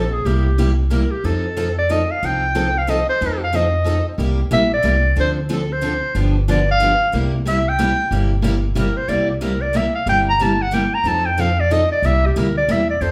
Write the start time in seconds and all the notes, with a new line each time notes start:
Already playing: A#1 A4
0.13 G#4
0.25 C2 C3 G3 A#3 E4 G4
0.58 C3 G3 A#3 E4 G4
0.90 C3 G3 A#3 E4 G4 A#4
1.11 G4
1.24 F2 F3 C4 D#4 A4
1.56 F3 C4 D#4 A4
1.78 D5
1.90 F3 C4 D#4 A4 D#5
2.11 F5
2.23 C2 F3 C4 D#4 A4 G5
2.55 F3 C4 D#4 A4
2.78 F5
2.88 F3 C4 D#4 A4 D#5
3.09 C5
3.21 F2 F3 C4 D#4 A4
3.44 F5
3.53 F3 C4 D#4 A4 D#5
3.84 F3 C4 D#4 A4
4.08 C5
4.18 C2 C3 G3 A#3 E4 G4
4.51 A#1 C3 G3 A#3 E4 G4 E5
4.74 D5
4.84 C2 C3 G3 A#3 E4 G4
5.16 D2 D3 F3 C4 D4 A4 C5
5.50 D3 F3 C4 D4 A4
5.72 C5
5.82 D3 F3 C4 D4 A4
6.15 G1 D3 F3 B3 D4 G4
6.48 D3 F3 B3 D4 G4 D5
6.71 F5
6.82 D3 F3 B3 D4 G4
7.13 C2 C3 G3 A#3 E4 G4
7.45 C3 G3 A#3 E4 G4 E5
7.69 G5
7.79 C3 G3 A#3 E4 G4
8.11 G1 C3 G3 A#3 E4 G4
8.42 C3 G3 A#3 E4 G4
8.75 C3 G3 A#3 E4 G4 A#4
8.97 C5
9.08 C2 C3 G3 A#3 E4 G4 D5
9.30 G4
9.41 C3 G3 A#3 E4 G4 A#4
9.62 D5
9.74 C3 G3 A#3 E4 G4 E5
9.95 F5
10.06 G1 C3 G3 A#3 E4 G4 G5
10.29 A#5
10.41 C3 G3 A#3 E4 G4 A5
10.62 F#5
10.73 C3 G3 A#3 E4 G4 G5
10.95 A#5
11.04 F2 F3 C4 D#4 A4
11.08 A5
11.26 G5
11.39 F3 C4 D#4 A4 F5
11.60 D5
11.70 F3 C4 D#4 A4 D#5
11.92 D5
12.02 C2 C3 G3 A#3 E4 G4 E5
12.26 G4
12.36 D2 C3 G3 A#3 E4 G4 A#4
12.57 D5
12.68 E2 C3 G3 A#3 E4 G4 E5
12.90 D5
13.01 F2 F3 C4 D#4 A4 C5